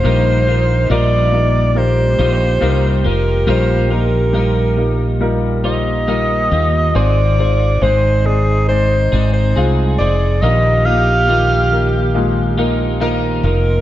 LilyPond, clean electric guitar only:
\new Staff \with { instrumentName = "Clean electric guitar" } { \time 4/4 \key ees \major \tempo 4 = 70 <bes, g bes ees' f'>8 <bes ees' f'>8 <g bes ees' f'>4. <bes ees' f'>8 <g bes ees' f'>8 <bes ees' f'>8 | <bes, g bes ees' f'>8 <bes ees' f'>8 <g bes ees' f'>4. <bes ees' f'>8 <g bes ees' f'>8 <bes ees' f'>8 | <aes, ees aes c' ees' aes'>8 <aes c' ees' aes'>8 <aes c' ees' aes'>4. <aes c' ees' aes'>8 <aes c' ees' aes'>8 <aes c' ees' aes'>8 | <bes, ees bes ees' f'>8 <bes ees' f'>8 <ees bes ees' f'>4. <bes ees' f'>8 <ees bes ees' f'>8 <bes ees' f'>8 | }